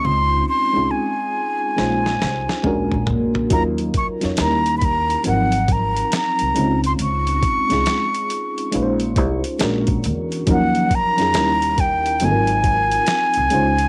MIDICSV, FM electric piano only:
0, 0, Header, 1, 2, 480
1, 0, Start_track
1, 0, Tempo, 869565
1, 18, Time_signature, 4, 2, 24, 8
1, 7665, End_track
2, 0, Start_track
2, 0, Title_t, "FM electric piano"
2, 0, Program_c, 0, 5
2, 0, Control_c, 0, 64, 127
2, 0, Note_on_c, 0, 56, 71
2, 0, Note_on_c, 0, 60, 75
2, 0, Note_on_c, 0, 61, 66
2, 0, Note_on_c, 0, 63, 66
2, 0, Note_on_c, 0, 65, 63
2, 353, Note_off_c, 0, 56, 0
2, 356, Note_off_c, 0, 61, 0
2, 359, Note_off_c, 0, 63, 0
2, 361, Note_off_c, 0, 65, 0
2, 382, Note_off_c, 0, 60, 0
2, 404, Note_on_c, 0, 56, 63
2, 408, Note_on_c, 0, 61, 55
2, 415, Note_on_c, 0, 63, 55
2, 420, Note_on_c, 0, 65, 56
2, 426, Note_on_c, 0, 68, 66
2, 967, Note_off_c, 0, 56, 0
2, 973, Note_off_c, 0, 61, 0
2, 974, Note_on_c, 0, 56, 72
2, 978, Note_off_c, 0, 63, 0
2, 980, Note_on_c, 0, 61, 67
2, 983, Note_off_c, 0, 65, 0
2, 984, Control_c, 0, 64, 0
2, 984, Note_on_c, 0, 63, 65
2, 986, Note_off_c, 0, 68, 0
2, 990, Note_on_c, 0, 65, 62
2, 997, Note_on_c, 0, 72, 77
2, 1097, Control_c, 0, 64, 127
2, 1431, Note_off_c, 0, 56, 0
2, 1434, Note_off_c, 0, 61, 0
2, 1436, Note_off_c, 0, 63, 0
2, 1439, Note_off_c, 0, 65, 0
2, 1442, Note_off_c, 0, 72, 0
2, 1453, Note_on_c, 0, 56, 78
2, 1459, Note_on_c, 0, 61, 72
2, 1464, Control_c, 0, 64, 0
2, 1466, Note_on_c, 0, 62, 82
2, 1470, Note_on_c, 0, 66, 76
2, 1474, Note_on_c, 0, 70, 91
2, 1566, Control_c, 0, 64, 127
2, 1910, Note_off_c, 0, 56, 0
2, 1914, Note_off_c, 0, 61, 0
2, 1917, Note_off_c, 0, 62, 0
2, 1919, Note_off_c, 0, 66, 0
2, 1921, Note_off_c, 0, 70, 0
2, 1932, Note_on_c, 0, 54, 86
2, 1936, Note_on_c, 0, 61, 71
2, 1942, Note_on_c, 0, 63, 77
2, 1946, Control_c, 0, 64, 0
2, 1946, Note_on_c, 0, 65, 78
2, 1952, Note_on_c, 0, 70, 92
2, 2033, Control_c, 0, 64, 127
2, 2295, Note_off_c, 0, 54, 0
2, 2297, Note_off_c, 0, 61, 0
2, 2300, Note_off_c, 0, 63, 0
2, 2302, Note_off_c, 0, 65, 0
2, 2305, Note_off_c, 0, 70, 0
2, 2324, Note_on_c, 0, 54, 64
2, 2329, Note_on_c, 0, 61, 54
2, 2336, Note_on_c, 0, 63, 57
2, 2341, Note_on_c, 0, 65, 57
2, 2347, Note_on_c, 0, 73, 70
2, 2413, Note_off_c, 0, 61, 0
2, 2415, Note_off_c, 0, 54, 0
2, 2415, Note_on_c, 0, 55, 64
2, 2419, Note_off_c, 0, 63, 0
2, 2420, Note_on_c, 0, 61, 59
2, 2423, Note_off_c, 0, 65, 0
2, 2425, Control_c, 0, 64, 0
2, 2426, Note_off_c, 0, 73, 0
2, 2426, Note_on_c, 0, 63, 58
2, 2429, Note_on_c, 0, 64, 59
2, 2438, Note_on_c, 0, 70, 80
2, 2514, Control_c, 0, 64, 127
2, 2872, Note_off_c, 0, 55, 0
2, 2874, Note_off_c, 0, 61, 0
2, 2877, Note_off_c, 0, 63, 0
2, 2879, Note_off_c, 0, 64, 0
2, 2883, Note_off_c, 0, 70, 0
2, 2890, Note_on_c, 0, 54, 70
2, 2896, Note_on_c, 0, 60, 63
2, 2902, Note_on_c, 0, 63, 66
2, 2906, Control_c, 0, 64, 0
2, 2906, Note_on_c, 0, 53, 68
2, 2912, Note_on_c, 0, 70, 85
2, 2989, Control_c, 0, 64, 127
2, 3577, Note_off_c, 0, 54, 0
2, 3580, Note_off_c, 0, 60, 0
2, 3583, Note_off_c, 0, 63, 0
2, 3585, Note_off_c, 0, 53, 0
2, 3588, Note_off_c, 0, 70, 0
2, 3612, Note_on_c, 0, 56, 70
2, 3617, Note_on_c, 0, 61, 67
2, 3623, Note_on_c, 0, 63, 64
2, 3625, Control_c, 0, 64, 0
2, 3629, Note_on_c, 0, 65, 64
2, 3635, Note_on_c, 0, 60, 79
2, 3722, Control_c, 0, 64, 127
2, 4193, Note_off_c, 0, 56, 0
2, 4196, Note_off_c, 0, 61, 0
2, 4199, Note_off_c, 0, 63, 0
2, 4202, Note_off_c, 0, 65, 0
2, 4205, Note_off_c, 0, 60, 0
2, 4247, Note_on_c, 0, 56, 62
2, 4253, Note_on_c, 0, 61, 57
2, 4257, Note_on_c, 0, 63, 57
2, 4264, Note_on_c, 0, 65, 60
2, 4269, Note_on_c, 0, 68, 71
2, 4805, Note_off_c, 0, 56, 0
2, 4810, Note_off_c, 0, 61, 0
2, 4811, Note_on_c, 0, 56, 87
2, 4815, Note_off_c, 0, 63, 0
2, 4817, Note_on_c, 0, 61, 74
2, 4821, Note_off_c, 0, 65, 0
2, 4822, Note_on_c, 0, 63, 75
2, 4825, Control_c, 0, 64, 0
2, 4827, Note_off_c, 0, 68, 0
2, 4828, Note_on_c, 0, 65, 84
2, 4835, Note_on_c, 0, 71, 72
2, 4871, Note_on_c, 0, 72, 90
2, 4872, Note_off_c, 0, 71, 0
2, 4921, Control_c, 0, 64, 127
2, 5270, Note_off_c, 0, 56, 0
2, 5273, Note_off_c, 0, 61, 0
2, 5275, Note_off_c, 0, 63, 0
2, 5278, Note_off_c, 0, 65, 0
2, 5294, Note_on_c, 0, 56, 84
2, 5300, Note_off_c, 0, 72, 0
2, 5300, Note_on_c, 0, 61, 75
2, 5305, Control_c, 0, 64, 0
2, 5306, Note_on_c, 0, 62, 80
2, 5311, Note_on_c, 0, 66, 72
2, 5318, Note_on_c, 0, 70, 97
2, 5415, Control_c, 0, 64, 127
2, 5751, Note_off_c, 0, 56, 0
2, 5754, Note_off_c, 0, 61, 0
2, 5757, Note_off_c, 0, 62, 0
2, 5760, Note_off_c, 0, 66, 0
2, 5763, Note_off_c, 0, 70, 0
2, 5775, Note_on_c, 0, 54, 87
2, 5780, Note_on_c, 0, 61, 78
2, 5785, Note_on_c, 0, 63, 77
2, 5786, Control_c, 0, 64, 0
2, 5792, Note_on_c, 0, 53, 81
2, 5798, Note_on_c, 0, 70, 96
2, 5865, Control_c, 0, 64, 127
2, 6136, Note_off_c, 0, 54, 0
2, 6139, Note_off_c, 0, 61, 0
2, 6141, Note_off_c, 0, 63, 0
2, 6145, Note_off_c, 0, 53, 0
2, 6148, Note_off_c, 0, 70, 0
2, 6167, Note_on_c, 0, 54, 67
2, 6172, Note_on_c, 0, 61, 61
2, 6179, Note_on_c, 0, 63, 63
2, 6185, Note_on_c, 0, 65, 59
2, 6189, Note_on_c, 0, 68, 72
2, 6253, Note_off_c, 0, 61, 0
2, 6255, Note_on_c, 0, 55, 73
2, 6256, Note_off_c, 0, 54, 0
2, 6259, Note_off_c, 0, 63, 0
2, 6259, Note_on_c, 0, 61, 66
2, 6265, Note_off_c, 0, 65, 0
2, 6266, Control_c, 0, 64, 0
2, 6266, Note_on_c, 0, 63, 65
2, 6267, Note_off_c, 0, 68, 0
2, 6271, Note_on_c, 0, 64, 59
2, 6277, Note_on_c, 0, 70, 77
2, 6378, Control_c, 0, 64, 127
2, 6711, Note_off_c, 0, 55, 0
2, 6714, Note_off_c, 0, 61, 0
2, 6717, Note_off_c, 0, 63, 0
2, 6720, Note_off_c, 0, 64, 0
2, 6723, Note_off_c, 0, 70, 0
2, 6737, Note_on_c, 0, 54, 72
2, 6744, Note_on_c, 0, 60, 67
2, 6745, Control_c, 0, 64, 0
2, 6749, Note_on_c, 0, 63, 66
2, 6754, Note_on_c, 0, 65, 69
2, 6759, Note_on_c, 0, 69, 62
2, 6794, Note_off_c, 0, 69, 0
2, 6796, Note_on_c, 0, 70, 84
2, 6826, Control_c, 0, 64, 127
2, 7420, Note_off_c, 0, 54, 0
2, 7424, Note_off_c, 0, 60, 0
2, 7426, Note_off_c, 0, 63, 0
2, 7428, Note_off_c, 0, 65, 0
2, 7450, Note_off_c, 0, 70, 0
2, 7454, Note_on_c, 0, 56, 85
2, 7459, Note_on_c, 0, 61, 81
2, 7465, Note_on_c, 0, 63, 75
2, 7466, Control_c, 0, 64, 0
2, 7471, Note_on_c, 0, 65, 78
2, 7477, Note_on_c, 0, 72, 91
2, 7578, Control_c, 0, 64, 127
2, 7665, Note_off_c, 0, 56, 0
2, 7665, Note_off_c, 0, 61, 0
2, 7665, Note_off_c, 0, 63, 0
2, 7665, Note_off_c, 0, 65, 0
2, 7665, Note_off_c, 0, 72, 0
2, 7665, End_track
0, 0, End_of_file